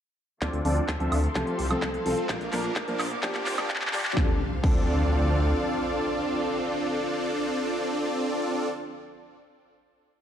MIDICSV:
0, 0, Header, 1, 8, 480
1, 0, Start_track
1, 0, Key_signature, -1, "minor"
1, 0, Tempo, 468750
1, 427, Time_signature, 4, 2, 24, 8
1, 10459, End_track
2, 0, Start_track
2, 0, Title_t, "String section"
2, 0, Program_c, 0, 48
2, 427, Note_on_c, 0, 69, 74
2, 427, Note_on_c, 0, 77, 69
2, 427, Note_on_c, 0, 84, 84
2, 428, Note_on_c, 0, 74, 65
2, 1378, Note_off_c, 0, 74, 0
2, 1387, Note_on_c, 0, 72, 74
2, 2328, Note_off_c, 0, 69, 0
2, 2328, Note_off_c, 0, 84, 0
2, 2338, Note_off_c, 0, 72, 0
2, 2346, Note_on_c, 0, 70, 78
2, 2347, Note_on_c, 0, 74, 67
2, 2347, Note_on_c, 0, 86, 89
2, 3298, Note_off_c, 0, 74, 0
2, 3307, Note_on_c, 0, 79, 75
2, 4229, Note_off_c, 0, 77, 0
2, 4248, Note_off_c, 0, 70, 0
2, 4248, Note_off_c, 0, 86, 0
2, 4258, Note_off_c, 0, 79, 0
2, 4267, Note_on_c, 0, 50, 83
2, 4267, Note_on_c, 0, 62, 74
2, 4268, Note_on_c, 0, 72, 74
2, 4268, Note_on_c, 0, 77, 91
2, 8886, Note_off_c, 0, 50, 0
2, 8886, Note_off_c, 0, 62, 0
2, 8886, Note_off_c, 0, 72, 0
2, 8886, Note_off_c, 0, 77, 0
2, 10459, End_track
3, 0, Start_track
3, 0, Title_t, "Supersaw synth"
3, 0, Program_c, 1, 81
3, 427, Note_on_c, 1, 60, 97
3, 427, Note_on_c, 1, 62, 91
3, 427, Note_on_c, 1, 69, 90
3, 427, Note_on_c, 1, 74, 108
3, 428, Note_on_c, 1, 65, 91
3, 604, Note_off_c, 1, 60, 0
3, 604, Note_off_c, 1, 62, 0
3, 604, Note_off_c, 1, 65, 0
3, 604, Note_off_c, 1, 69, 0
3, 604, Note_off_c, 1, 74, 0
3, 668, Note_on_c, 1, 60, 83
3, 668, Note_on_c, 1, 62, 78
3, 668, Note_on_c, 1, 65, 76
3, 668, Note_on_c, 1, 69, 73
3, 668, Note_on_c, 1, 74, 90
3, 951, Note_off_c, 1, 60, 0
3, 951, Note_off_c, 1, 62, 0
3, 951, Note_off_c, 1, 65, 0
3, 951, Note_off_c, 1, 69, 0
3, 951, Note_off_c, 1, 74, 0
3, 1026, Note_on_c, 1, 69, 79
3, 1027, Note_on_c, 1, 60, 84
3, 1027, Note_on_c, 1, 62, 79
3, 1027, Note_on_c, 1, 65, 80
3, 1027, Note_on_c, 1, 76, 97
3, 1204, Note_off_c, 1, 60, 0
3, 1204, Note_off_c, 1, 62, 0
3, 1204, Note_off_c, 1, 65, 0
3, 1204, Note_off_c, 1, 69, 0
3, 1204, Note_off_c, 1, 76, 0
3, 1387, Note_on_c, 1, 67, 91
3, 1388, Note_on_c, 1, 60, 89
3, 1388, Note_on_c, 1, 65, 78
3, 1719, Note_off_c, 1, 60, 0
3, 1719, Note_off_c, 1, 65, 0
3, 1719, Note_off_c, 1, 67, 0
3, 1747, Note_on_c, 1, 69, 93
3, 1748, Note_on_c, 1, 60, 86
3, 1748, Note_on_c, 1, 65, 77
3, 1924, Note_off_c, 1, 60, 0
3, 1924, Note_off_c, 1, 65, 0
3, 1924, Note_off_c, 1, 69, 0
3, 2107, Note_on_c, 1, 65, 74
3, 2108, Note_on_c, 1, 60, 81
3, 2108, Note_on_c, 1, 69, 89
3, 2319, Note_off_c, 1, 60, 0
3, 2319, Note_off_c, 1, 65, 0
3, 2319, Note_off_c, 1, 69, 0
3, 2347, Note_on_c, 1, 62, 104
3, 2347, Note_on_c, 1, 65, 92
3, 2347, Note_on_c, 1, 70, 114
3, 2524, Note_off_c, 1, 62, 0
3, 2524, Note_off_c, 1, 65, 0
3, 2524, Note_off_c, 1, 70, 0
3, 2587, Note_on_c, 1, 65, 78
3, 2587, Note_on_c, 1, 70, 92
3, 2588, Note_on_c, 1, 62, 86
3, 2870, Note_off_c, 1, 62, 0
3, 2870, Note_off_c, 1, 65, 0
3, 2870, Note_off_c, 1, 70, 0
3, 2947, Note_on_c, 1, 62, 87
3, 2947, Note_on_c, 1, 65, 80
3, 2947, Note_on_c, 1, 72, 97
3, 3124, Note_off_c, 1, 62, 0
3, 3124, Note_off_c, 1, 65, 0
3, 3124, Note_off_c, 1, 72, 0
3, 3307, Note_on_c, 1, 58, 90
3, 3307, Note_on_c, 1, 62, 79
3, 3307, Note_on_c, 1, 65, 80
3, 3307, Note_on_c, 1, 67, 84
3, 3307, Note_on_c, 1, 72, 99
3, 3638, Note_off_c, 1, 58, 0
3, 3638, Note_off_c, 1, 62, 0
3, 3638, Note_off_c, 1, 67, 0
3, 3638, Note_off_c, 1, 72, 0
3, 3639, Note_off_c, 1, 65, 0
3, 3668, Note_on_c, 1, 58, 85
3, 3668, Note_on_c, 1, 62, 80
3, 3668, Note_on_c, 1, 65, 83
3, 3668, Note_on_c, 1, 67, 81
3, 3668, Note_on_c, 1, 74, 98
3, 3845, Note_off_c, 1, 58, 0
3, 3845, Note_off_c, 1, 62, 0
3, 3845, Note_off_c, 1, 65, 0
3, 3845, Note_off_c, 1, 67, 0
3, 3845, Note_off_c, 1, 74, 0
3, 4027, Note_on_c, 1, 65, 73
3, 4027, Note_on_c, 1, 74, 91
3, 4028, Note_on_c, 1, 58, 80
3, 4028, Note_on_c, 1, 62, 73
3, 4028, Note_on_c, 1, 67, 76
3, 4239, Note_off_c, 1, 58, 0
3, 4239, Note_off_c, 1, 62, 0
3, 4239, Note_off_c, 1, 65, 0
3, 4239, Note_off_c, 1, 67, 0
3, 4239, Note_off_c, 1, 74, 0
3, 4268, Note_on_c, 1, 69, 80
3, 4269, Note_on_c, 1, 60, 90
3, 4269, Note_on_c, 1, 62, 81
3, 4269, Note_on_c, 1, 65, 80
3, 4269, Note_on_c, 1, 74, 99
3, 4402, Note_off_c, 1, 60, 0
3, 4402, Note_off_c, 1, 62, 0
3, 4402, Note_off_c, 1, 65, 0
3, 4402, Note_off_c, 1, 69, 0
3, 4402, Note_off_c, 1, 74, 0
3, 4748, Note_on_c, 1, 60, 91
3, 4748, Note_on_c, 1, 62, 81
3, 4748, Note_on_c, 1, 65, 81
3, 4748, Note_on_c, 1, 69, 81
3, 4748, Note_on_c, 1, 74, 95
3, 8886, Note_off_c, 1, 60, 0
3, 8886, Note_off_c, 1, 62, 0
3, 8886, Note_off_c, 1, 65, 0
3, 8886, Note_off_c, 1, 69, 0
3, 8886, Note_off_c, 1, 74, 0
3, 10459, End_track
4, 0, Start_track
4, 0, Title_t, "Grand piano"
4, 0, Program_c, 2, 0
4, 661, Note_on_c, 2, 53, 74
4, 665, Note_on_c, 2, 60, 67
4, 669, Note_on_c, 2, 62, 68
4, 673, Note_on_c, 2, 69, 81
4, 818, Note_off_c, 2, 53, 0
4, 820, Note_off_c, 2, 60, 0
4, 822, Note_off_c, 2, 62, 0
4, 824, Note_off_c, 2, 69, 0
4, 1021, Note_on_c, 2, 53, 79
4, 1025, Note_on_c, 2, 60, 73
4, 1029, Note_on_c, 2, 62, 72
4, 1033, Note_on_c, 2, 69, 85
4, 1120, Note_off_c, 2, 53, 0
4, 1122, Note_off_c, 2, 60, 0
4, 1124, Note_off_c, 2, 62, 0
4, 1126, Note_off_c, 2, 69, 0
4, 1380, Note_on_c, 2, 53, 86
4, 1384, Note_on_c, 2, 57, 81
4, 1388, Note_on_c, 2, 60, 79
4, 1392, Note_on_c, 2, 69, 97
4, 1538, Note_off_c, 2, 53, 0
4, 1540, Note_off_c, 2, 57, 0
4, 1542, Note_off_c, 2, 60, 0
4, 1544, Note_off_c, 2, 69, 0
4, 1740, Note_on_c, 2, 53, 87
4, 1743, Note_on_c, 2, 57, 82
4, 1747, Note_on_c, 2, 60, 82
4, 1752, Note_on_c, 2, 69, 98
4, 2075, Note_off_c, 2, 53, 0
4, 2077, Note_off_c, 2, 57, 0
4, 2079, Note_off_c, 2, 60, 0
4, 2081, Note_off_c, 2, 69, 0
4, 2100, Note_on_c, 2, 53, 90
4, 2104, Note_on_c, 2, 57, 81
4, 2108, Note_on_c, 2, 60, 80
4, 2112, Note_on_c, 2, 69, 99
4, 2200, Note_off_c, 2, 53, 0
4, 2202, Note_off_c, 2, 57, 0
4, 2204, Note_off_c, 2, 60, 0
4, 2206, Note_off_c, 2, 69, 0
4, 2581, Note_on_c, 2, 53, 79
4, 2585, Note_on_c, 2, 58, 69
4, 2589, Note_on_c, 2, 62, 73
4, 2592, Note_on_c, 2, 70, 88
4, 2738, Note_off_c, 2, 53, 0
4, 2740, Note_off_c, 2, 58, 0
4, 2742, Note_off_c, 2, 62, 0
4, 2744, Note_off_c, 2, 70, 0
4, 2941, Note_on_c, 2, 53, 79
4, 2945, Note_on_c, 2, 58, 74
4, 2950, Note_on_c, 2, 62, 72
4, 2953, Note_on_c, 2, 70, 91
4, 3040, Note_off_c, 2, 53, 0
4, 3043, Note_off_c, 2, 58, 0
4, 3045, Note_off_c, 2, 62, 0
4, 3047, Note_off_c, 2, 70, 0
4, 3301, Note_on_c, 2, 53, 87
4, 3305, Note_on_c, 2, 58, 83
4, 3310, Note_on_c, 2, 62, 81
4, 3313, Note_on_c, 2, 67, 97
4, 3458, Note_off_c, 2, 53, 0
4, 3460, Note_off_c, 2, 58, 0
4, 3463, Note_off_c, 2, 62, 0
4, 3464, Note_off_c, 2, 67, 0
4, 3661, Note_on_c, 2, 53, 90
4, 3666, Note_on_c, 2, 58, 83
4, 3670, Note_on_c, 2, 62, 82
4, 3674, Note_on_c, 2, 67, 95
4, 3995, Note_off_c, 2, 53, 0
4, 3998, Note_off_c, 2, 58, 0
4, 4000, Note_off_c, 2, 62, 0
4, 4002, Note_off_c, 2, 67, 0
4, 4022, Note_on_c, 2, 53, 90
4, 4025, Note_on_c, 2, 58, 84
4, 4030, Note_on_c, 2, 62, 84
4, 4034, Note_on_c, 2, 67, 102
4, 4121, Note_off_c, 2, 53, 0
4, 4122, Note_off_c, 2, 58, 0
4, 4125, Note_off_c, 2, 62, 0
4, 4127, Note_off_c, 2, 67, 0
4, 4249, Note_on_c, 2, 53, 83
4, 4261, Note_on_c, 2, 60, 80
4, 4273, Note_on_c, 2, 62, 80
4, 4285, Note_on_c, 2, 69, 96
4, 4391, Note_off_c, 2, 53, 0
4, 4398, Note_off_c, 2, 60, 0
4, 4404, Note_off_c, 2, 62, 0
4, 4411, Note_off_c, 2, 69, 0
4, 4730, Note_on_c, 2, 53, 88
4, 4743, Note_on_c, 2, 60, 80
4, 4755, Note_on_c, 2, 62, 79
4, 4767, Note_on_c, 2, 69, 99
4, 9467, Note_off_c, 2, 53, 0
4, 9479, Note_off_c, 2, 60, 0
4, 9492, Note_off_c, 2, 62, 0
4, 9504, Note_off_c, 2, 69, 0
4, 10459, End_track
5, 0, Start_track
5, 0, Title_t, "Detuned saw bass"
5, 0, Program_c, 3, 39
5, 426, Note_on_c, 3, 38, 98
5, 506, Note_off_c, 3, 38, 0
5, 547, Note_on_c, 3, 38, 89
5, 626, Note_off_c, 3, 38, 0
5, 665, Note_on_c, 3, 38, 86
5, 825, Note_off_c, 3, 38, 0
5, 906, Note_on_c, 3, 38, 78
5, 986, Note_off_c, 3, 38, 0
5, 1025, Note_on_c, 3, 38, 83
5, 1105, Note_off_c, 3, 38, 0
5, 1145, Note_on_c, 3, 38, 89
5, 1305, Note_off_c, 3, 38, 0
5, 1386, Note_on_c, 3, 36, 85
5, 1466, Note_off_c, 3, 36, 0
5, 1626, Note_on_c, 3, 36, 99
5, 1785, Note_off_c, 3, 36, 0
5, 1867, Note_on_c, 3, 36, 84
5, 2026, Note_off_c, 3, 36, 0
5, 2106, Note_on_c, 3, 36, 105
5, 2186, Note_off_c, 3, 36, 0
5, 2346, Note_on_c, 3, 34, 102
5, 2426, Note_off_c, 3, 34, 0
5, 2467, Note_on_c, 3, 34, 91
5, 2547, Note_off_c, 3, 34, 0
5, 2586, Note_on_c, 3, 34, 89
5, 2745, Note_off_c, 3, 34, 0
5, 2826, Note_on_c, 3, 34, 83
5, 2906, Note_off_c, 3, 34, 0
5, 2947, Note_on_c, 3, 34, 88
5, 3027, Note_off_c, 3, 34, 0
5, 3067, Note_on_c, 3, 34, 89
5, 3226, Note_off_c, 3, 34, 0
5, 3307, Note_on_c, 3, 31, 85
5, 3386, Note_off_c, 3, 31, 0
5, 3547, Note_on_c, 3, 31, 97
5, 3706, Note_off_c, 3, 31, 0
5, 3787, Note_on_c, 3, 31, 85
5, 3946, Note_off_c, 3, 31, 0
5, 4028, Note_on_c, 3, 31, 106
5, 4107, Note_off_c, 3, 31, 0
5, 4267, Note_on_c, 3, 38, 100
5, 4401, Note_off_c, 3, 38, 0
5, 4747, Note_on_c, 3, 38, 98
5, 5666, Note_off_c, 3, 38, 0
5, 10459, End_track
6, 0, Start_track
6, 0, Title_t, "Impact"
6, 0, Program_c, 4, 103
6, 4268, Note_on_c, 4, 60, 70
6, 9045, Note_off_c, 4, 60, 0
6, 10459, End_track
7, 0, Start_track
7, 0, Title_t, "Riser"
7, 0, Program_c, 5, 103
7, 427, Note_on_c, 5, 60, 76
7, 4267, Note_off_c, 5, 60, 0
7, 10459, End_track
8, 0, Start_track
8, 0, Title_t, "Drums"
8, 426, Note_on_c, 9, 39, 48
8, 426, Note_on_c, 9, 42, 79
8, 427, Note_on_c, 9, 36, 110
8, 529, Note_off_c, 9, 36, 0
8, 529, Note_off_c, 9, 39, 0
8, 529, Note_off_c, 9, 42, 0
8, 547, Note_on_c, 9, 42, 37
8, 649, Note_off_c, 9, 42, 0
8, 666, Note_on_c, 9, 46, 99
8, 768, Note_off_c, 9, 46, 0
8, 787, Note_on_c, 9, 42, 53
8, 889, Note_off_c, 9, 42, 0
8, 907, Note_on_c, 9, 36, 113
8, 907, Note_on_c, 9, 39, 50
8, 907, Note_on_c, 9, 42, 79
8, 1009, Note_off_c, 9, 36, 0
8, 1009, Note_off_c, 9, 39, 0
8, 1009, Note_off_c, 9, 42, 0
8, 1026, Note_on_c, 9, 42, 35
8, 1129, Note_off_c, 9, 42, 0
8, 1146, Note_on_c, 9, 46, 103
8, 1146, Note_on_c, 9, 76, 74
8, 1249, Note_off_c, 9, 46, 0
8, 1249, Note_off_c, 9, 76, 0
8, 1266, Note_on_c, 9, 42, 56
8, 1369, Note_off_c, 9, 42, 0
8, 1386, Note_on_c, 9, 39, 58
8, 1386, Note_on_c, 9, 42, 79
8, 1387, Note_on_c, 9, 36, 118
8, 1489, Note_off_c, 9, 36, 0
8, 1489, Note_off_c, 9, 39, 0
8, 1489, Note_off_c, 9, 42, 0
8, 1506, Note_on_c, 9, 42, 38
8, 1608, Note_off_c, 9, 42, 0
8, 1626, Note_on_c, 9, 46, 105
8, 1729, Note_off_c, 9, 46, 0
8, 1747, Note_on_c, 9, 42, 55
8, 1747, Note_on_c, 9, 76, 79
8, 1849, Note_off_c, 9, 42, 0
8, 1849, Note_off_c, 9, 76, 0
8, 1867, Note_on_c, 9, 36, 114
8, 1867, Note_on_c, 9, 39, 66
8, 1867, Note_on_c, 9, 42, 80
8, 1969, Note_off_c, 9, 36, 0
8, 1969, Note_off_c, 9, 39, 0
8, 1969, Note_off_c, 9, 42, 0
8, 1987, Note_on_c, 9, 42, 38
8, 2090, Note_off_c, 9, 42, 0
8, 2107, Note_on_c, 9, 46, 104
8, 2210, Note_off_c, 9, 46, 0
8, 2347, Note_on_c, 9, 36, 119
8, 2347, Note_on_c, 9, 39, 73
8, 2347, Note_on_c, 9, 42, 81
8, 2449, Note_off_c, 9, 36, 0
8, 2449, Note_off_c, 9, 39, 0
8, 2449, Note_off_c, 9, 42, 0
8, 2467, Note_on_c, 9, 42, 37
8, 2569, Note_off_c, 9, 42, 0
8, 2587, Note_on_c, 9, 39, 76
8, 2587, Note_on_c, 9, 46, 108
8, 2689, Note_off_c, 9, 39, 0
8, 2689, Note_off_c, 9, 46, 0
8, 2706, Note_on_c, 9, 42, 51
8, 2809, Note_off_c, 9, 42, 0
8, 2826, Note_on_c, 9, 39, 82
8, 2826, Note_on_c, 9, 42, 80
8, 2827, Note_on_c, 9, 36, 120
8, 2929, Note_off_c, 9, 36, 0
8, 2929, Note_off_c, 9, 39, 0
8, 2929, Note_off_c, 9, 42, 0
8, 2947, Note_on_c, 9, 42, 38
8, 3049, Note_off_c, 9, 42, 0
8, 3067, Note_on_c, 9, 39, 84
8, 3067, Note_on_c, 9, 46, 108
8, 3067, Note_on_c, 9, 76, 79
8, 3169, Note_off_c, 9, 39, 0
8, 3169, Note_off_c, 9, 46, 0
8, 3169, Note_off_c, 9, 76, 0
8, 3187, Note_on_c, 9, 42, 55
8, 3289, Note_off_c, 9, 42, 0
8, 3307, Note_on_c, 9, 36, 125
8, 3307, Note_on_c, 9, 39, 90
8, 3307, Note_on_c, 9, 42, 82
8, 3409, Note_off_c, 9, 36, 0
8, 3409, Note_off_c, 9, 39, 0
8, 3409, Note_off_c, 9, 42, 0
8, 3427, Note_on_c, 9, 39, 80
8, 3427, Note_on_c, 9, 42, 37
8, 3529, Note_off_c, 9, 39, 0
8, 3529, Note_off_c, 9, 42, 0
8, 3547, Note_on_c, 9, 39, 101
8, 3547, Note_on_c, 9, 46, 112
8, 3649, Note_off_c, 9, 39, 0
8, 3649, Note_off_c, 9, 46, 0
8, 3667, Note_on_c, 9, 39, 84
8, 3667, Note_on_c, 9, 76, 83
8, 3769, Note_off_c, 9, 39, 0
8, 3769, Note_off_c, 9, 76, 0
8, 3787, Note_on_c, 9, 36, 122
8, 3788, Note_on_c, 9, 39, 98
8, 3788, Note_on_c, 9, 42, 82
8, 3847, Note_off_c, 9, 39, 0
8, 3847, Note_on_c, 9, 39, 89
8, 3889, Note_off_c, 9, 36, 0
8, 3890, Note_off_c, 9, 42, 0
8, 3907, Note_off_c, 9, 39, 0
8, 3907, Note_on_c, 9, 39, 91
8, 3907, Note_on_c, 9, 42, 37
8, 3968, Note_off_c, 9, 39, 0
8, 3968, Note_on_c, 9, 39, 93
8, 4010, Note_off_c, 9, 42, 0
8, 4028, Note_off_c, 9, 39, 0
8, 4028, Note_on_c, 9, 39, 108
8, 4028, Note_on_c, 9, 46, 113
8, 4088, Note_off_c, 9, 39, 0
8, 4088, Note_on_c, 9, 39, 93
8, 4130, Note_off_c, 9, 46, 0
8, 4148, Note_off_c, 9, 39, 0
8, 4148, Note_on_c, 9, 39, 93
8, 4148, Note_on_c, 9, 42, 54
8, 4208, Note_off_c, 9, 39, 0
8, 4208, Note_on_c, 9, 39, 97
8, 4251, Note_off_c, 9, 42, 0
8, 4268, Note_on_c, 9, 36, 112
8, 4268, Note_on_c, 9, 38, 90
8, 4310, Note_off_c, 9, 39, 0
8, 4370, Note_off_c, 9, 36, 0
8, 4370, Note_off_c, 9, 38, 0
8, 4747, Note_on_c, 9, 36, 114
8, 4747, Note_on_c, 9, 49, 84
8, 4850, Note_off_c, 9, 36, 0
8, 4850, Note_off_c, 9, 49, 0
8, 10459, End_track
0, 0, End_of_file